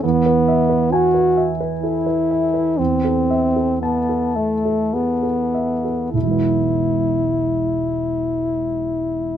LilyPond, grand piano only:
\new Staff \with { instrumentName = "Grand piano" } { \time 3/4 \key e \major \tempo 4 = 55 e,16 b'16 e''16 b'16 gis''16 b'16 e''16 b'16 a'16 b'16 e''16 b'16 | e,16 a'16 e''16 a'16 a''16 a'16 e''16 a'16 gis'16 a'16 e''16 a'16 | <e,, b,, e gis b e'>2. | }